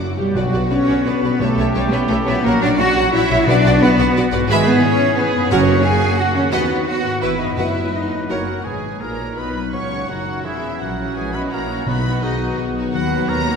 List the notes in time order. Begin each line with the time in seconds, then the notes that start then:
Already playing: F#1 F#2 A#3 F#4 C#5 F#5
0.00 F#4
0.16 B2 G3 G4
0.22 B3
0.27 F#4
0.31 B2 F#4 D5
0.35 B1 D3 F#3 B3 F#4 B4 D5
0.52 B1 F#4 B4 D5
0.69 B1 C#4 F#4 B4 C#5 D5
0.87 B1 F#4 B4 D5
1.04 B1 B3 F#4 B4 D5
1.22 B1 B2 F#4 B4 D5
1.27 G3
1.32 E4
1.36 B1 B2 A3 G4 C#5
1.40 E3 A3 C#4 G4 A4 C#5 E5
1.57 B1 G4 C#5 E5
1.74 B1 G3 G4 C#5 E5
1.92 B1 B3 G4 B4 C#5 E5
2.08 B1 A3 G4 A4 C#5 E5
2.26 B1 A#2 B3 G4 B4 C#5 E5
2.31 F#3 F#4
2.40 A#1 A#3 F#4 A#4 C#5
2.45 F#3 F#4 A#4 C#5 F#5
2.60 A#1 D4 F#4 C#5 D5 F#5
2.64 C#5
2.78 A#1 F#4 C#5 F#5
2.95 A#1 F#4 C#5 F#5
3.12 A#1 E4 F#4 C#5 E5
3.17 C#5 F#5
3.30 A#1 B2 F#4 C#5 F#5
3.34 F#3
3.39 F#4
3.43 B2 B3 D4 F#4 B4
3.47 B1 D4 B4 D5 F#5
3.64 B1 F#4 B4 D5 F#5
3.81 B1 B3 F#4 B4 D5 F#5
3.99 B1 F#4 B4 D5 F#5
4.16 B1 F#4 B4 D5 F#5
4.31 B1 G#2 F#4 B4 D5 F#5
4.36 G#3
4.41 E4
4.45 B4
4.49 G#1 E3 G#3 B3 G#4 B4 E5 B5
4.65 B3 B4
4.83 C#4 C#5
5.16 E3 B3 G#4 B4
5.33 F#2 D#3
5.38 A#3
5.42 C#4
5.47 C#4 F#4 C#5
5.51 F#1 F#2 C#3 A#3 C#4 F#4 A#4 C#5 F#5
5.84 G#4 G#5
6.17 C#3 A#3 F#4 F#5
6.34 D#3 C#4 C#5
6.39 B3
6.44 D#4
6.49 D#3 B3 F#4 B4 D#5 F#5
6.53 D#2 B4
6.86 D#3 B3 F#4 F#5
7.03 G#2
7.08 B3
7.12 E4
7.17 E3 E4 B4 E5
7.21 G#1 B3 E4 B4 E5
7.38 F#2 D#4 D#5
7.44 B3
7.49 F#4
7.53 F#1 F#2 F#3 B3 E4 F#4 B4 E5
7.57 B4 E5 F#5
7.93 F#3 B3 D#4 B4 D#5
8.11 F#2
8.16 C#4
8.20 F#4
8.25 A#4 F#5
8.29 F#1 F#3 A#3 F#4 A#4 C#5 F#5
8.64 G#1 G#2 B2 G#3 G#4 B4 G#5
8.84 F#4
9.00 A#1 A#2 A#3 D#4 A#4 C#5 A#5
9.19 F#4
9.36 B1 B2 F#3 B3 B4 D#5 B5
9.55 D#4
9.72 C#2 A#2 C#3 C#4 C#5 F#5 C#6
9.92 F#4
10.07 F#1 F#2 F#3 C#4 D#4 F#4 A#4 F#5
10.28 F#4
10.43 E1 E2 E3 A#3 C#4 E4 G#4 E5
10.64 C#4
10.80 A#1 A#2 E3 F#3 C#4 F#4 A#4 F#5
10.98 F#3 C#4 E4 F#4
11.17 A#1 G#3 F#4 G#4 B4 G#5
11.33 F#3 B3 C#4 E4 F#4 B4 D#5 B5
11.51 A#1 A#3 F#4 A#4 C#5 A#5
11.69 F#3 C#4 E4 F#4
11.87 B1 B2 D#3 F#3 B3 D#4 F#4 B4 D#5 B5
12.04 F#3 B3 D#4 F#4
12.22 B1 D#3 D#4 F#4 G#4 D#5
12.39 F#3 B3 D#4 F#4
12.58 B1 F#3 F#4
12.75 F#3 B3 D#4 F#4
12.93 D#2 D#3 F#3 F#4 B4 F#5
13.11 F#3 B3 D#4 F#4
13.28 D#2 A#3 F#4 A#4 B4 C#5 A#5
13.46 F#3 B3 D#4 F#4